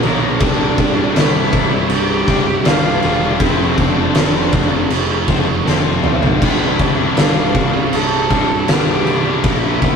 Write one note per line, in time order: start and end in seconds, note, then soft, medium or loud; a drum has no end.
0.00 0.38 A#2 loud
0.00 0.38 A#2 medium
0.00 0.38 F3 loud
0.00 0.39 A#3 loud
0.00 0.23 A#3 medium
0.00 0.22 D4 medium
0.00 crash medium
0.04 0.37 B1 medium
0.04 0.20 F4 medium
0.04 0.20 A#4 medium
0.21 0.39 A#3 medium
0.21 0.39 D4 medium
0.21 0.38 F4 medium
0.21 0.38 A#4 medium
0.39 0.74 C1 loud
0.39 1.13 C2 loud
0.39 0.77 G2 loud
0.39 0.77 C3 loud
0.39 0.79 G3 loud
0.39 1.16 D4 loud
0.39 0.79 D4 loud
0.39 kick loud
0.39 crash medium
0.78 1.11 C1 medium
0.78 1.14 G2 medium
0.78 1.15 C3 medium
0.78 1.15 G3 medium
0.78 1.16 D4 medium
0.78 kick medium
0.78 crash medium
0.97 1.16 C3 medium
0.97 1.17 G3 medium
0.97 1.18 D4 medium
1.14 1.49 C1 loud
1.14 1.71 C2 loud
1.14 1.52 G2 medium
1.14 1.35 C3 medium
1.14 1.34 G3 loud
1.14 1.33 D4 loud
1.14 1.92 E4 loud
1.14 snare loud
1.14 crash medium
1.34 1.52 C3 medium
1.34 1.53 G3 medium
1.34 1.52 D4 medium
1.53 1.86 C1 medium
1.53 1.72 G2 medium
1.53 1.72 C3 medium
1.53 1.72 G3 medium
1.53 1.71 D4 loud
1.53 muted distorted electric guitar stroke medium
1.53 kick loud
1.53 crash medium
1.72 2.11 C3 medium
1.72 2.10 G3 medium
1.72 2.08 D4 medium
1.72 muted distorted electric guitar stroke medium
1.89 2.23 C1 loud
1.89 2.67 G4 loud
1.89 crash medium
2.09 2.27 C3 medium
2.09 2.27 G3 medium
2.09 2.28 D4 medium
2.26 2.61 C1 medium
2.26 2.64 G2 medium
2.26 2.48 C3 medium
2.26 2.47 G3 medium
2.26 2.46 D4 medium
2.26 kick medium
2.26 crash medium
2.46 2.65 C3 medium
2.46 2.65 G3 medium
2.46 2.66 D4 medium
2.46 muted distorted electric guitar stroke medium
2.65 2.99 C1 medium
2.65 3.38 C2 loud
2.65 3.01 G2 loud
2.65 3.01 C3 loud
2.65 3.02 G3 loud
2.65 3.03 D4 loud
2.65 3.42 F4 loud
2.65 snare loud
2.65 crash medium
3.02 3.36 E1 loud
3.02 3.38 G2 medium
3.02 3.22 C3 medium
3.02 3.21 G3 medium
3.02 3.19 D4 medium
3.02 crash medium
3.21 3.38 C3 medium
3.21 3.39 G3 medium
3.21 3.38 D4 medium
3.39 3.74 F1 loud
3.39 4.13 F2 loud
3.39 4.14 C3 loud
3.39 3.75 F3 loud
3.39 3.76 A3 loud
3.39 3.78 C4 loud
3.39 3.81 E4 loud
3.39 3.78 F4 loud
3.39 kick loud
3.39 crash medium
3.76 4.11 F1 medium
3.76 4.15 F3 medium
3.76 4.15 A3 medium
3.76 4.16 C4 medium
3.76 5.29 D4 loud
3.76 4.16 F4 medium
3.76 kick medium
3.76 crash medium
3.95 4.15 F3 medium
3.95 4.15 A3 medium
3.95 4.17 C4 medium
3.95 4.17 F4 medium
4.15 4.50 F1 medium
4.15 4.72 F2 loud
4.15 4.72 C3 loud
4.15 4.35 F3 loud
4.15 4.34 A3 loud
4.15 4.34 C4 loud
4.15 4.33 F4 loud
4.15 snare loud
4.15 crash medium
4.34 4.51 F3 medium
4.34 4.52 A3 medium
4.34 4.53 C4 medium
4.34 4.52 F4 medium
4.52 4.87 F1 loud
4.52 4.72 F3 medium
4.52 4.72 A3 medium
4.52 4.72 C4 medium
4.52 4.71 F4 medium
4.52 muted distorted electric guitar stroke soft
4.52 kick loud
4.52 crash medium
4.71 5.10 F3 medium
4.71 5.09 A3 medium
4.71 5.09 C4 medium
4.71 5.07 F4 medium
4.71 muted distorted electric guitar stroke soft
4.90 5.24 F1 loud
4.90 crash loud
5.09 5.26 F3 medium
5.09 5.27 A3 medium
5.09 5.29 C4 medium
5.09 5.29 F4 medium
5.28 5.62 F1 medium
5.28 5.49 F3 medium
5.28 5.48 A3 medium
5.28 5.48 C4 medium
5.28 5.46 F4 medium
5.28 kick medium
5.28 crash medium
5.47 5.66 F3 medium
5.47 5.67 A3 medium
5.47 5.67 C4 medium
5.47 5.67 F4 medium
5.47 muted distorted electric guitar stroke medium
5.66 6.00 F1 medium
5.66 6.40 F2 loud
5.66 6.40 C3 loud
5.66 6.02 F3 medium
5.66 6.03 A3 loud
5.66 6.05 C4 loud
5.66 6.05 F4 loud
5.66 snare medium
6.03 6.38 B1 medium
6.03 6.24 F3 medium
6.03 6.23 A3 medium
6.03 6.23 C4 medium
6.03 6.22 F4 medium
6.03 mid tom medium
6.23 6.41 F3 medium
6.23 6.40 A3 medium
6.23 6.47 C4 medium
6.23 6.40 F4 medium
6.23 floor tom loud
6.41 6.75 C1 loud
6.41 7.16 C2 loud
6.41 6.78 G2 loud
6.41 6.79 C3 loud
6.41 6.80 G3 loud
6.41 6.82 D4 loud
6.41 7.21 E4 loud
6.41 kick loud
6.41 crash loud
6.41 crash medium
6.79 7.13 C1 loud
6.79 7.16 G2 medium
6.79 7.17 C3 medium
6.79 7.17 G3 medium
6.79 7.19 D4 medium
6.79 kick medium
6.79 crash medium
6.96 7.16 C3 medium
6.96 7.16 G3 medium
6.96 7.17 D4 medium
7.17 7.51 C1 loud
7.17 7.74 C2 medium
7.17 7.54 G2 medium
7.17 7.38 C3 loud
7.17 7.36 G3 loud
7.17 7.35 D4 loud
7.17 7.96 F4 loud
7.17 snare loud
7.17 crash medium
7.36 7.54 C3 medium
7.36 7.54 G3 medium
7.36 7.55 D4 medium
7.54 7.88 C1 loud
7.54 7.73 G2 medium
7.54 7.73 C3 medium
7.54 7.72 G3 medium
7.54 7.73 D4 medium
7.54 muted distorted electric guitar stroke medium
7.54 kick loud
7.54 crash medium
7.73 8.12 C3 medium
7.73 8.11 G3 medium
7.73 8.10 D4 medium
7.73 muted distorted electric guitar stroke medium
7.93 8.27 C1 loud
7.93 8.71 A4 loud
7.93 crash medium
8.11 8.29 C3 medium
8.11 8.29 G3 medium
8.11 8.31 D4 medium
8.29 8.64 C1 medium
8.29 8.67 G2 medium
8.29 8.50 C3 medium
8.29 8.49 G3 medium
8.29 8.48 D4 medium
8.29 kick loud
8.29 crash medium
8.49 8.68 C3 medium
8.49 8.68 G3 medium
8.49 8.69 D4 medium
8.49 muted distorted electric guitar stroke soft
8.68 9.02 C1 medium
8.68 9.42 C2 loud
8.68 9.04 G2 loud
8.68 9.05 C3 loud
8.68 9.06 G3 loud
8.68 9.08 D4 loud
8.68 9.45 G4 loud
8.68 snare loud
8.68 crash medium
9.05 9.40 C1 medium
9.05 9.41 G2 medium
9.05 9.25 C3 medium
9.05 9.25 G3 medium
9.05 9.24 D4 medium
9.05 crash medium
9.24 9.43 C3 medium
9.24 9.42 G3 medium
9.24 9.45 D4 medium
9.43 9.78 A#1 loud
9.43 9.96 A#2 loud
9.43 9.96 F3 medium
9.43 9.79 A#3 loud
9.43 9.81 D4 loud
9.43 9.96 E4 loud
9.43 9.81 F4 loud
9.43 9.81 A#4 loud
9.43 kick loud
9.43 crash medium
9.80 9.96 A#1 medium
9.80 9.96 A#3 medium
9.80 9.96 D4 medium
9.80 9.96 F4 medium
9.80 9.96 A#4 medium
9.80 kick medium
9.80 crash medium